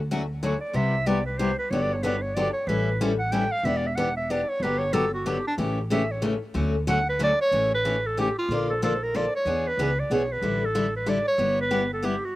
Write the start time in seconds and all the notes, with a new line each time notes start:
Already playing: D2
0.11 D3 F#3 A3 C#4 F#4
0.43 D3 F#3 A3 C#4 F#4 C#5
0.61 D5
0.73 C2 C3 G3 B3 E4 G4 E5
1.06 C3 G3 B3 E4 G4 D5
1.26 B4
1.38 C3 G3 B3 E4 G4 C5
1.59 B4
1.70 G1 D3 F#3 B3 D4 G4 C#5
1.82 D5
1.93 C#5
2.03 D3 F#3 B3 D4 G4 B4
2.22 C#5
2.35 D3 F#3 B3 D4 G4 D5
2.53 C#5
2.67 A1 E3 G3 C#4 E4 A4 B4
3.01 E3 G3 C#4 E4 A4
3.19 F#5
3.32 E3 G3 C#4 E4 A4 G5
3.52 F5
3.63 E1 E3 B3 D4 G4 E5
3.77 D5
3.87 E5
3.96 E3 B3 D4 G4 F#5
4.17 E5
4.30 E3 B3 D4 G4 D5
4.49 C#5
4.60 G1 D3 F#3 B3 D4 B4
4.64 G4
4.79 C#5
4.93 D3 F#3 B3 D4 G4 A4
5.14 F#4
5.26 D3 F#3 B3 D4 G4
5.47 D4
5.58 A1 C#3 E3 A3 C#4 G4
5.90 C#3 E3 A3 C#4 G4 E5
6.11 C#5
6.22 C#3 E3 A3 C#4 G4
6.54 D2 D3 F#3 A3 C#4 F#4
6.87 D3 F#3 A3 C#4 F#4 F#5
7.09 B4
7.19 D3 F#3 A3 C#4 F#4
7.24 D5
7.41 C#5
7.51 A1 C#3 E3 A3 C#4 G4
7.75 B4
7.85 C#3 E3 A3 C#4 G4
8.06 A4
8.17 C#3 E3 A3 C#4 G4
8.38 F4
8.49 A#1 D3 F3 A#3 D4 A4
8.70 A4
8.82 D3 F3 A#3 D4 A4
9.03 A#4
9.14 D3 F3 A#3 D4 A4 D5
9.36 C#5
9.45 E2 E3 B3 D4 G#4
9.68 B4
9.77 C#2 E3 B3 D4 G#4
10.00 D5
10.10 B1 E3 B3 D4 G#4
10.14 C#5
10.32 B4
10.42 A1 D3 G3 D4 E4 A4
10.66 A4
10.75 D3 G3 D4 E4 A4
10.96 B4
11.06 D3 G3 D4 E4 A4 D5
11.28 C#5
11.38 G1 G3 B3 E4 G4
11.61 B4
11.71 G3 B3 E4 G4
11.94 A4
12.02 G3 B3 E4 G4
12.25 F#4